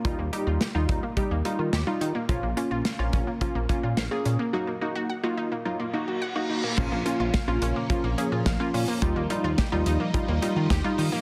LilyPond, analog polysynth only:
\new Staff \with { instrumentName = "Analog polysynth" } { \time 4/4 \key bes \minor \tempo 4 = 107 <g ees' f'>16 r16 <g ees' g'>8 r16 <g ees' f'>8 r16 <g ees' g'>16 r16 <g ees' f'>8 r16 <g ees' f'>8 r16 | <bes des' f'>16 r16 <bes des' f'>8 r16 <bes des' f'>8 r16 <bes des' f'>16 r16 <bes des' f'>8 r16 <bes des' aes'>8 r16 | <bes ees' ges'>16 r16 <bes ees' ges'>8 r16 <bes ees' f'>8 r16 <bes ees' f'>16 r16 <bes ees' ges'>8 r16 <bes ees' ges'>8 r16 | <bes des' f'>16 r16 <bes des' f'>8 r16 <bes des' f'>8 r16 <bes des' f'>16 r16 <bes des' aes'>8 r16 <bes des' f'>8 r16 |
<g ees' f'>16 r16 <g ees' f'>8 r16 <g ees' f'>8 r16 <g ees' f'>16 r16 <g ees' f'>8 r16 <g ees' f'>8 r16 | }